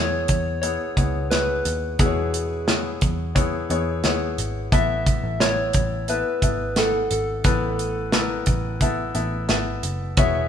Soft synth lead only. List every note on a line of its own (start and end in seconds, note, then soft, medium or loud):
0.00 0.59 C#5 loud
0.62 1.27 C#5 medium
1.31 2.01 B4 medium
2.00 2.68 G#4 medium
4.74 5.42 E5 loud
5.41 6.11 C#5 loud
6.09 6.80 B4 medium
6.78 7.11 A4 medium
7.12 8.44 A4 medium
10.19 10.48 E5 medium